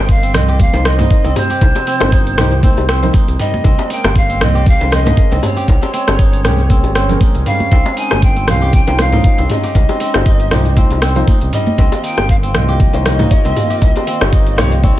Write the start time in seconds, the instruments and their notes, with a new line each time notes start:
Already playing: analog synth bass G1, analog synth pad C3 G3 C4, kora C4 D#4 C5
0.03 pan flute G5
0.09 pan flute F5, kick, closed hi-hat, cabasa
0.23 kora C4, closed hi-hat, cabasa
0.34 analog synth bass C2, pan flute D#5, cross-stick, mid tom, open hi-hat, low bongo, muted conga, low conga, cabasa
0.48 kora G4, closed hi-hat, cabasa
0.59 pan flute F5, kick, closed hi-hat, muted conga, high conga, low conga, cabasa
0.74 analog synth bass C2, felt piano D#4 A#4 C5, kora C5, closed hi-hat, low bongo, cabasa
0.85 pan flute D#5, cross-stick, open hi-hat, muted conga, high conga, low conga, cabasa
0.99 kora D#4, closed hi-hat, mid tom, low bongo, high conga, cabasa
1.10 felt piano D#4 A#4 C5, kick, closed hi-hat, cabasa
1.24 analog synth bass C2, kora C4, closed hi-hat, low bongo, muted conga, cabasa
1.36 pan flute C5, mid tom, open hi-hat, high bongo, high conga, cabasa
1.50 kora G4, open hi-hat, muted conga, cabasa
1.61 analog synth bass C2, analog synth pad F3, kick, closed hi-hat, low bongo, cabasa
1.75 kora C4, closed hi-hat, high bongo, muted conga, cabasa
1.87 kora C4, open hi-hat, cabasa
2.00 analog synth bass G1, felt piano D#4 A#4 C5, cross-stick, closed hi-hat, high bongo, muted conga, high conga, cabasa
2.12 kora D#4, kick, closed hi-hat, cabasa
2.27 closed hi-hat, cabasa
2.38 analog synth bass C2, felt piano D#4 A#4 C5, kora G4, cross-stick, mid tom, open hi-hat, muted conga, high conga, low conga, cabasa
2.52 closed hi-hat, cabasa
2.63 kora C4, felt piano D#4 A#4 C5, kick, closed hi-hat, muted conga, high conga, cabasa
2.77 analog synth bass C2, closed hi-hat, high bongo, cabasa
2.89 kora C4, cross-stick, open hi-hat, muted conga, cabasa
3.02 felt piano D#4 A#4 C5, closed hi-hat, low conga, cabasa
3.13 kora D#4, kick, open hi-hat, high conga, low conga, cabasa
3.28 analog synth bass C2, closed hi-hat, muted conga, cabasa
3.39 kora G3, pan flute D#5, mid tom, open hi-hat, low bongo, cabasa
3.54 muted conga, high conga, cabasa
3.64 analog synth bass C2, analog synth pad G#3 A#3 C#4, kora C4, kick, closed hi-hat, low bongo, cabasa
3.78 closed hi-hat, high bongo, muted conga, cabasa
3.90 kora D#4, pan flute G5, open hi-hat, cabasa
4.04 analog synth bass G1, kora C5, cross-stick, closed hi-hat, high bongo, muted conga, high conga, cabasa
4.16 pan flute F5, kick, closed hi-hat, cabasa
4.29 kora C4, closed hi-hat, cabasa
4.41 analog synth bass C2, pan flute D#5, cross-stick, mid tom, open hi-hat, low bongo, muted conga, low conga, cabasa
4.55 kora G4, closed hi-hat, cabasa
4.66 pan flute F5, kick, closed hi-hat, muted conga, high conga, low conga, cabasa
4.80 analog synth bass C2, felt piano C#4 G#4 A#4, kora C5, closed hi-hat, low bongo, cabasa
4.92 pan flute D#5, cross-stick, open hi-hat, muted conga, high conga, low conga, cabasa
5.06 kora D#4, closed hi-hat, mid tom, low bongo, high conga, cabasa
5.17 felt piano C#4 G#4 A#4, kick, closed hi-hat, cabasa
5.31 analog synth bass C2, kora C4, closed hi-hat, low bongo, muted conga, cabasa
5.43 pan flute C#5, mid tom, open hi-hat, high bongo, high conga, cabasa
5.57 kora G4, open hi-hat, muted conga, cabasa
5.68 analog synth bass C2, analog synth pad C#5, kick, closed hi-hat, low bongo, cabasa
5.81 kora C4, closed hi-hat, high bongo, muted conga, cabasa
5.94 kora C4, open hi-hat, cabasa
6.07 analog synth bass G1, felt piano C#4 G#4 A#4, cross-stick, closed hi-hat, high bongo, muted conga, high conga, cabasa
6.19 kora D#4, kick, closed hi-hat, cabasa
6.33 closed hi-hat, cabasa
6.44 analog synth bass C2, felt piano C#4 G#4 A#4, kora G4, cross-stick, mid tom, open hi-hat, low bongo, muted conga, high conga, low conga, cabasa
6.59 closed hi-hat, cabasa
6.70 kora C4, felt piano C#4 G#4 A#4, kick, closed hi-hat, muted conga, high conga, cabasa
6.84 analog synth bass G1, closed hi-hat, high bongo, cabasa
6.95 kora C4, cross-stick, open hi-hat, muted conga, cabasa
7.09 felt piano C#4 G#4 A#4, closed hi-hat, low conga, cabasa
7.21 kora D#4, kick, open hi-hat, high conga, low conga, cabasa
7.35 analog synth bass C2, closed hi-hat, muted conga, cabasa
7.46 kora G3, pan flute F5, mid tom, open hi-hat, low bongo, cabasa
7.60 muted conga, high conga, cabasa
7.71 analog synth bass C2, kora C4, analog synth pad D#4, kick, closed hi-hat, low bongo, cabasa
7.86 closed hi-hat, high bongo, muted conga, cabasa
7.97 kora D#4, pan flute G#5, open hi-hat, cabasa
8.11 analog synth bass G1, kora C5, cross-stick, closed hi-hat, high bongo, muted conga, high conga, cabasa
8.22 pan flute G5, kick, closed hi-hat, cabasa
8.36 kora C4, closed hi-hat, cabasa
8.48 analog synth bass C2, pan flute F5, cross-stick, mid tom, open hi-hat, low bongo, muted conga, low conga, cabasa
8.62 kora G4, closed hi-hat, cabasa
8.73 pan flute G5, kick, closed hi-hat, muted conga, high conga, low conga, cabasa
8.87 analog synth bass C2, felt piano D#4 F4 C5, kora C5, closed hi-hat, low bongo, cabasa
8.99 pan flute F5, cross-stick, open hi-hat, muted conga, high conga, low conga, cabasa
9.12 kora D#4, closed hi-hat, mid tom, low bongo, high conga, cabasa
9.24 felt piano D#4 F4 C5, kick, closed hi-hat, cabasa
9.38 analog synth bass C2, kora C4, closed hi-hat, low bongo, muted conga, cabasa
9.50 pan flute D#5, mid tom, open hi-hat, high bongo, high conga, cabasa
9.63 kora G4, open hi-hat, muted conga, cabasa
9.75 analog synth bass C2, kick, closed hi-hat, low bongo, cabasa
9.89 kora C4, closed hi-hat, high bongo, muted conga, cabasa
10.00 kora C4, open hi-hat, cabasa
10.14 analog synth bass G1, felt piano D#4 F4 C5, cross-stick, closed hi-hat, high bongo, muted conga, high conga, cabasa
10.26 kora D#4, kick, closed hi-hat, cabasa
10.40 closed hi-hat, cabasa
10.51 analog synth bass C2, felt piano D#4 F4 C5, kora G4, cross-stick, mid tom, open hi-hat, muted conga, high conga, low conga, cabasa
10.65 closed hi-hat, cabasa
10.76 kora C4, felt piano D#4 F4 C5, kick, closed hi-hat, muted conga, high conga, cabasa
10.90 analog synth bass C2, closed hi-hat, high bongo, cabasa
11.02 kora C4, cross-stick, open hi-hat, muted conga, cabasa
11.16 felt piano D#4 F4 C5, closed hi-hat, low conga, cabasa
11.28 kora D#4, kick, open hi-hat, high conga, low conga, cabasa
11.41 analog synth bass C2, closed hi-hat, muted conga, cabasa
11.53 kora G3, pan flute D#5, mid tom, open hi-hat, low bongo, cabasa
11.67 muted conga, high conga, cabasa
11.78 analog synth bass C2, analog synth pad D#3 A#3 F4, kora C4, kick, closed hi-hat, low bongo, cabasa
11.92 closed hi-hat, high bongo, muted conga, cabasa
12.03 kora D#4, pan flute G5, open hi-hat, cabasa
12.18 analog synth bass G1, kora C5, cross-stick, closed hi-hat, high bongo, muted conga, high conga, cabasa
12.29 pan flute F5, kick, closed hi-hat, cabasa
12.43 kora C4, closed hi-hat, cabasa
12.54 analog synth bass C2, pan flute D#5, cross-stick, mid tom, open hi-hat, low bongo, muted conga, low conga, cabasa
12.68 kora G4, closed hi-hat, cabasa
12.80 kick, closed hi-hat, muted conga, high conga, low conga, cabasa
12.93 analog synth bass C2, felt piano D#4 G4 C#5, kora C5, closed hi-hat, low bongo, cabasa
13.05 cross-stick, open hi-hat, muted conga, high conga, low conga, cabasa
13.19 kora D#4, closed hi-hat, mid tom, low bongo, high conga, cabasa
13.31 felt piano D#4 G4 C#5, kick, closed hi-hat, cabasa
13.45 analog synth bass C2, kora C4, closed hi-hat, low bongo, muted conga, cabasa
13.57 mid tom, open hi-hat, high bongo, high conga, cabasa
13.70 kora G4, open hi-hat, muted conga, cabasa
13.82 analog synth bass C2, kick, closed hi-hat, low bongo, cabasa
13.96 kora C4, closed hi-hat, high bongo, muted conga, cabasa
14.07 kora C4, open hi-hat, cabasa
14.21 analog synth bass G1, felt piano D#4 G4 C#5, cross-stick, closed hi-hat, high bongo, muted conga, high conga, cabasa
14.33 kora D#4, kick, closed hi-hat, cabasa
14.47 closed hi-hat, cabasa
14.57 analog synth bass C2, felt piano D#4 G4 C#5, kora G4, cross-stick, mid tom, open hi-hat, low bongo, muted conga, high conga, low conga, cabasa
14.72 closed hi-hat, cabasa
14.84 kora C4, felt piano D#4 G4 C#5, kick, closed hi-hat, muted conga, high conga, cabasa